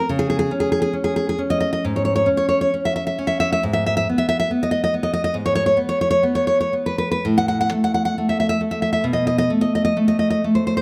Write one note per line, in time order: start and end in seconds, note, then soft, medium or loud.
0.09 0.50 C#3 loud
0.19 0.29 G#4 loud
0.30 0.38 G#4 loud
0.39 0.50 G#4 loud
0.51 0.92 C#4 medium
0.60 0.71 G#4 medium
0.72 0.81 G#4 loud
0.82 0.93 G#4 loud
0.93 1.37 C#4 medium
1.04 1.15 G#4 medium
1.16 1.27 G#4 loud
1.29 1.40 G#4 loud
1.39 2.25 C#4 medium
1.50 1.59 D#5 loud
1.60 1.72 D#5 loud
1.73 1.84 D#5 loud
1.85 2.27 G#2 medium
1.96 2.04 C#5 medium
2.05 2.14 C#5 medium
2.16 2.27 C#5 loud
2.26 2.73 C#4 medium
2.37 2.47 C#5 medium
2.49 2.60 C#5 medium
2.61 2.72 C#5 medium
2.74 3.17 C#4 medium
2.85 2.95 E5 loud
2.96 3.05 E5 loud
3.07 3.17 E5 loud
3.18 3.59 C#4 medium
3.27 3.39 E5 loud
3.40 3.51 E5 loud
3.52 3.63 E5 loud
3.63 4.05 G#2 medium
3.73 3.84 E5 loud
3.86 3.96 E5 loud
3.97 4.07 E5 loud
4.09 4.50 B3 medium
4.18 4.27 E5 loud
4.29 4.38 E5 loud
4.40 4.50 E5 loud
4.51 4.93 B3 medium
4.63 4.70 D#5 loud
4.71 4.81 D#5 loud
4.84 4.93 D#5 loud
4.94 5.76 B3 medium
5.03 5.12 D#5 loud
5.13 5.23 D#5 loud
5.24 5.34 D#5 loud
5.34 5.76 G#2 medium
5.46 5.54 C#5 loud
5.55 5.65 C#5 loud
5.66 5.77 C#5 loud
5.77 6.22 B3 medium
5.89 6.00 C#5 loud
6.01 6.09 C#5 loud
6.11 6.22 C#5 loud
6.23 6.72 B3 medium
6.35 6.46 C#5 loud
6.47 6.59 C#5 medium
6.61 6.73 C#5 medium
6.73 7.20 B3 medium
6.86 6.97 B4 medium
6.98 7.10 B4 medium
7.11 7.24 B4 loud
7.25 7.70 A2 medium
7.38 7.47 F#5 loud
7.48 7.60 F#5 loud
7.61 7.71 F#5 loud
7.72 8.17 A3 medium
7.84 7.93 F#5 loud
7.94 8.04 F#5 loud
8.05 8.16 F#5 loud
8.18 8.60 A3 medium
8.29 8.39 E5 medium
8.40 8.48 E5 loud
8.49 8.60 E5 loud
8.61 9.02 A3 medium
8.71 8.81 E5 medium
8.82 8.91 E5 medium
8.93 9.05 E5 loud
9.04 9.49 B2 medium
9.13 9.26 D#5 medium
9.27 9.37 D#5 loud
9.38 9.50 D#5 loud
9.50 9.95 A3 medium
9.61 9.73 D#5 loud
9.75 9.83 D#5 medium
9.85 9.97 D#5 loud
9.97 10.43 A3 medium
10.08 10.18 D#5 medium
10.19 10.29 D#5 medium
10.30 10.43 D#5 medium
10.44 10.82 A3 medium
10.55 10.66 C5 medium
10.67 10.76 C5 medium
10.77 10.82 C5 medium